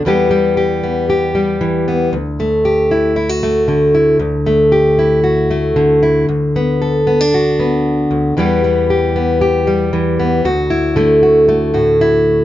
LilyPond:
\new Staff \with { instrumentName = "Steel-string acoustic guitar" } { \time 4/4 \key d \major \tempo 4 = 115 << { <e g b g'>8 g8 g'8 b8 g'8 g4 b8 | r8 a8 g'8 e'8 e'16 fis'16 a4 e'8 | r8 a8 g'8 e'8 fis'8 a4 e'8 | r8 b8 a'8 b16 d'16 fis'8 b4. |
<e g b g'>8 g8 g'8 b8 g'8 g4 b8 | fis'8 e'8 a8 fis'8 a8 fis'8 e'4 | } \\ { e,2. e4 | d,2. d4 | d,2. d4 | d,2.~ d,8 d,8 |
e,2. e4 | d,4 d4. a,4. | } >> }